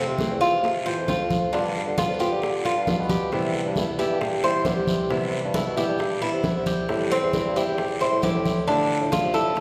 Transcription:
Already playing: C3 A3 C4 F4
0.07 C3
0.19 E3 A3 C4 F4, high bongo, high conga, short guiro
0.30 E2
0.41 E3 A3 C4 F4, high bongo, short guiro
0.52 C3
0.63 muted nylon-string guitar stroke, high bongo, high conga, long guiro
0.86 E3 A3 C4 F4 C5, high bongo, high conga
0.97 F2
1.08 A3 C4 F4, high bongo, low bongo, high conga, short guiro
1.19 F2
1.30 high conga, short guiro
1.52 G2 G3 B3 D4 F4, high bongo, high conga, long guiro
1.76 high bongo, high conga
1.87 D3
1.97 G3 B3 F4, high bongo, high conga, short guiro
2.09 F2
2.19 B3 F4 G4, high bongo, high conga, short guiro
2.31 D3
2.42 muted nylon-string guitar stroke, high bongo, high conga, long guiro
2.65 B3 F4, high bongo, high conga
2.76 G2
2.87 G3 B3 F4, high bongo, low bongo, high conga, short guiro
2.99 B2
3.09 G4, high conga, short guiro
3.32 C3 E3 G3 B3 E4, high bongo, high conga, long guiro
3.54 high bongo, high conga
3.65 G2
3.76 E3 G3 B3 E4, high bongo, high conga, short guiro
3.99 E3 G3 B3 E4 G4, high bongo, short guiro
4.10 G2
4.21 muted nylon-string guitar stroke, high bongo, high conga, long guiro
4.43 E3 G3 B3 E4 C5, high bongo, high conga
4.54 C3
4.65 E3 G3 B3 E4 G4, high bongo, low bongo, high conga, short guiro
4.76 C3
4.87 high conga, short guiro
5.09 C3 E3 G3 B3 E4, high bongo, high conga, long guiro
5.32 high bongo, high conga
5.44 G2
5.54 E3 G3 B3 E4, high bongo, high conga, short guiro
5.66 B2
5.76 E3 G3 B3 E4 G4, high bongo, high conga, short guiro
5.88 G2
5.99 muted nylon-string guitar stroke, high bongo, high conga, long guiro
6.21 E3 G3 B3 E4, high bongo, high conga
6.33 C3
6.44 E3 G3 B3 E4, high bongo, low bongo, high conga, short guiro
6.55 C3
6.66 G4, high conga, short guiro
6.89 A2 E3 G3 C4 E4, high bongo, high conga, long guiro
7.11 C4, high bongo, high conga
7.22 E2
7.33 E3 G3 C4 E4, high bongo, high conga, short guiro
7.45 G2
7.56 G3 C4 E4 G4, high bongo, short guiro
7.67 E2
7.78 muted nylon-string guitar stroke, high bongo, high conga, long guiro
8.01 G3 C4 E4 C5, high bongo, high conga
8.11 A2
8.22 E3 G3 C4 E4 G4, high bongo, low bongo, high conga, short guiro
8.34 A2
8.46 high conga, short guiro
8.67 D3 F3 A3 D4 E4, high bongo, high conga, long guiro
8.91 high bongo, high conga
9.01 A2
9.11 F3 A3 D4 E4 F4, high bongo, high conga, short guiro
9.23 C3
9.34 F3 A3 D4 E4 A4, high bongo, high conga, short guiro
9.45 A2
9.56 muted nylon-string guitar stroke, high bongo, high conga, long guiro

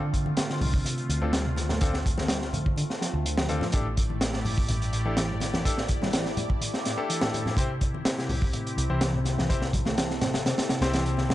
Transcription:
Already playing: D3 A3 C4 F4
0.14 kick, closed hi-hat
0.26 high conga
0.37 snare, closed hi-hat
0.50 D3, snare
0.61 C2, open hi-hat, low conga
0.74 kick
0.84 C3, closed hi-hat, high conga
0.98 closed hi-hat
1.09 D2 D3, closed hi-hat
1.22 D2 A3 C4 D4 F4 A4
1.33 G3, snare, closed hi-hat
1.46 C3
1.56 snare, closed hi-hat, high conga
1.69 A3, snare, low conga
1.81 C4 D4 F4 A4, kick, closed hi-hat
1.94 snare
2.06 kick, closed hi-hat
2.17 C4, snare, high conga
2.28 G3, snare, closed hi-hat
2.42 snare
2.53 C2 D3, closed hi-hat, low conga
2.66 kick
2.76 D3, closed hi-hat, high conga
2.90 snare
3.01 F3, snare, closed hi-hat
3.14 D2
3.25 D3, closed hi-hat
3.37 F3, snare
3.49 D3 C4 D4 F4 A4, closed hi-hat, high conga
3.61 F3, snare, low conga
3.72 A1 A2 D4 E4 G4 A4 D5, kick, closed hi-hat
3.97 kick, closed hi-hat
4.10 high conga
4.21 snare, closed hi-hat
4.33 A2, snare
4.45 G1, open hi-hat, low conga
4.58 kick
4.69 A1 G2, closed hi-hat, high conga
4.82 closed hi-hat
4.93 A2, closed hi-hat
5.05 E3 D4 E4 G4 A4
5.17 E3, snare, closed hi-hat
5.30 G2
5.40 snare, closed hi-hat, high conga
5.54 E3, snare, low conga
5.65 D4 E4 G4 A4, kick, closed hi-hat
5.78 snare
5.88 kick, closed hi-hat
6.02 G3, snare, high conga
6.13 E3, snare, closed hi-hat
6.26 snare
6.37 G1 A2, closed hi-hat, low conga
6.50 kick
6.61 A2, closed hi-hat, high conga
6.74 snare
6.85 A2, snare, closed hi-hat
6.98 D4 E4 G4 A4
7.09 E3, closed hi-hat
7.21 A2, snare
7.33 A2, closed hi-hat, high conga
7.46 A2, snare, low conga
7.57 C3 C4 E4 G4 C5, kick, closed hi-hat
7.81 kick, closed hi-hat
7.94 high conga
8.05 snare, closed hi-hat
8.18 C3, snare
8.29 C2, open hi-hat, low conga
8.42 kick
8.53 A2, closed hi-hat, high conga
8.67 closed hi-hat
8.77 C2 C3, closed hi-hat
8.90 C2 E3 C4 E4 G4 C5
9.01 E3, snare, closed hi-hat
9.14 A2
9.25 snare, closed hi-hat, high conga
9.38 E3, snare, low conga
9.49 C4 E4 G4 A4 C5, kick, closed hi-hat
9.62 snare
9.73 kick, closed hi-hat, low conga
9.85 A3, snare, high conga
9.97 E3, snare, closed hi-hat
10.11 snare
10.21 A1 C3, snare, closed hi-hat, low conga
10.34 snare, closed hi-hat
10.45 C3, snare, closed hi-hat, high conga
10.58 snare, closed hi-hat
10.69 C3, snare, closed hi-hat
10.81 C2 C4 E4 G4 C5, snare, closed hi-hat
10.93 E3, snare, closed hi-hat
11.06 C3, closed hi-hat
11.17 C3, snare, high conga
11.29 C3, snare, low conga

